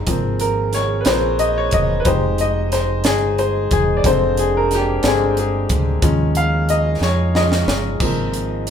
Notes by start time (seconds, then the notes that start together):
0.07 G#1 F3 A#3 C4 F4 G#4, kick, closed hi-hat
0.40 A#4, closed hi-hat
0.73 C#5, snare, closed hi-hat
1.01 B4
1.05 A#1 F3 A#3 C4 C5, snare, closed hi-hat
1.39 D#5, closed hi-hat
1.58 C#5
1.71 E1 D#5, kick, closed hi-hat
2.00 B4
2.05 F1 G#3 D#4 G4 C5, kick, closed hi-hat
2.38 D#5, closed hi-hat
2.72 C5, snare, closed hi-hat
3.04 G1 G#4, snare, closed hi-hat
3.38 C5, closed hi-hat
3.71 E1 G#4, kick, closed hi-hat
3.97 D5
4.04 F1 D3 G#3 A#3 C4 D4 C5, kick, closed hi-hat
4.37 G#4, closed hi-hat
4.57 A#4
4.71 G4, snare, closed hi-hat
5.03 G1 D3 G#3 C4, snare, closed hi-hat
5.07 G#4
5.37 G#4, closed hi-hat
5.69 D2, kick, closed hi-hat
6.02 D#2 F3 G#3 C#4 D#4, kick, closed hi-hat
6.35 F5, closed hi-hat
6.69 D#5, closed hi-hat
7.01 F2 C#5, snare
7.35 F3 G#3 C#4 D#5, snare
7.52 snare
7.67 G1, snare
8.00 G#1 F3 A#3 C4 F4, kick, tambourine, splash
8.34 closed hi-hat
8.67 closed hi-hat